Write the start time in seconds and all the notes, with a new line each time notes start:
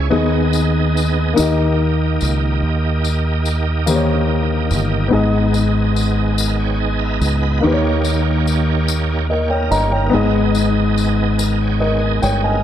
Already playing: C#5 E5
0.10 D#2 D#3 B3 D#4 G#4 D#5
0.53 tambourine
0.97 tambourine
1.34 D#3 A#3 D#4 F#4 G4 D#5, tambourine
1.39 D#2 G4 D#5
2.21 C#2, tambourine
2.63 D#2
3.05 tambourine
3.46 tambourine
3.86 D#3 A#3 D#4 G4 C5, tambourine
3.96 C#5
4.71 G1, tambourine
5.08 G#2 B3 D#4
5.12 G#1 A#3 D#4 G#4 D#5
5.19 B3
5.54 tambourine
5.96 tambourine
6.38 A#4 D#5, tambourine
6.59 C#5 G5
6.80 D#5 G#5
6.99 D#5 E5 A#5
7.21 C#2 D#5, tambourine
7.41 B5
7.61 D#2 D#3 A#3 D#4 G4 C#5
7.65 G4 B4
7.74 C#5
8.05 tambourine
8.47 tambourine
8.88 tambourine
9.30 A#4 C#5 D#5 G5
9.50 A#4 C#5 D#5 G5
9.71 G1 G4 C#5 D#5 A#5, tambourine
9.92 D#4 A#4 C#5 G5
10.10 G#2 B3 D#4 G#4 D#5
10.14 G#1 B3 D#4 G#4 D#5
10.55 tambourine
10.98 tambourine
11.39 A#4 D#5, tambourine
11.61 C#5 G5
11.80 A#4 D#5
12.00 D#5 G#5
12.22 G1 C#5 G5, tambourine
12.44 A#4 D#5 G#5